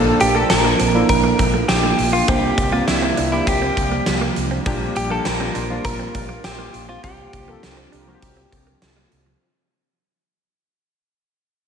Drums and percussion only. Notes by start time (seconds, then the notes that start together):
0.20 closed hi-hat
0.50 snare, closed hi-hat
0.80 closed hi-hat
1.09 kick, closed hi-hat
1.39 kick, closed hi-hat
1.69 snare, closed hi-hat
1.99 open hi-hat
2.28 kick, closed hi-hat
2.58 kick, closed hi-hat
2.88 snare, closed hi-hat
3.17 closed hi-hat
3.47 kick, closed hi-hat
3.77 kick, closed hi-hat
4.06 snare, closed hi-hat
4.36 closed hi-hat
4.66 kick, closed hi-hat
4.96 closed hi-hat
5.25 snare, closed hi-hat
5.55 closed hi-hat
5.85 kick, closed hi-hat
6.15 kick, closed hi-hat
6.44 snare, closed hi-hat
6.74 closed hi-hat
7.04 kick, closed hi-hat
7.33 kick, closed hi-hat
7.63 snare, closed hi-hat
7.93 closed hi-hat
8.22 kick, closed hi-hat
8.52 kick, closed hi-hat
8.82 snare, closed hi-hat
9.12 closed hi-hat